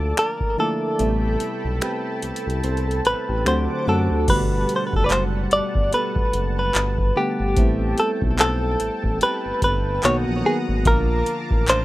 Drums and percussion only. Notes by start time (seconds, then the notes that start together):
0.17 finger snap, closed hi-hat
0.40 kick
0.99 closed hi-hat
1.40 closed hi-hat
1.81 finger snap, closed hi-hat
2.22 closed hi-hat
2.36 closed hi-hat
2.50 closed hi-hat
2.64 closed hi-hat
2.77 closed hi-hat
2.91 closed hi-hat
3.05 closed hi-hat
3.46 finger snap, closed hi-hat
4.28 kick, closed hi-hat, crash
4.69 closed hi-hat
4.93 kick
5.10 clap, closed hi-hat
5.51 closed hi-hat
5.75 kick
5.93 closed hi-hat
6.16 kick
6.33 closed hi-hat
6.75 clap, closed hi-hat
6.98 kick
7.57 kick, closed hi-hat
7.98 closed hi-hat
8.22 kick
8.39 clap, closed hi-hat
8.80 closed hi-hat
9.04 kick
9.21 closed hi-hat
9.62 kick, closed hi-hat
10.03 clap, closed hi-hat
10.85 kick, closed hi-hat
11.26 closed hi-hat
11.51 kick
11.68 clap, closed hi-hat